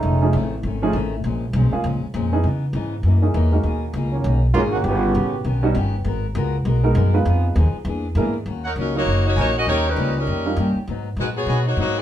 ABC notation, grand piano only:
X:1
M:4/4
L:1/8
Q:"Swing" 1/4=199
K:Ebm
V:1 name="Grand piano"
z [F,=A,^CE^G] z3 [F,A,CEG] z2 | z3 [A,B,DFA] z3 [_F,CDEA] | z4 z [_F,B,DEA]2 [A,B,DEG]- | [A,B,DEG]2 z4 [^G,^A,^C^D^F] z |
z4 z [=G,=B,DE^F] z2 | z4 z [A,CEGB]2 [A,CEFc]- | [A,CEFc]2 z4 [^G,=B,=D=E^A] z | z3 [G,DEFB] z4 |
z4 z [=G,DEFB] z2 | z8 |]